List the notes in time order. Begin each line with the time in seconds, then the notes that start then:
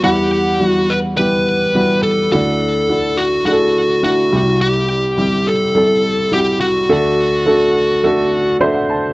0.03 E2 E3 G3 B3 E4 G4 F#5
0.60 G3 B3 E4 F#4
0.90 B4
1.17 G3 B3 E4 G4 B4
1.75 G3 B3 E4 F#4
2.03 A4
2.32 D2 D3 A3 D4 E4 F#4 A4
2.89 A3 D4 E4 F#4
3.17 F#4
3.45 A3 D4 E4 F#4 G#4
3.52 A4
4.03 A3 D4 E4 F#4
4.32 C2 C3 G3 C4 E4 G4
4.61 G4
5.17 G3 C4 E4 G4
5.47 A4
5.75 G3 C4 E4 A4
6.31 G3 C4 E4 F#4 G4
6.60 F#4
6.89 D2 D3 A3 D4 F#4 A4
7.46 A3 D4 F#4 A4
8.03 A3 D4 F#4 A4
8.60 A3 D4 F#4 C5 E5
8.74 F#5
8.90 A5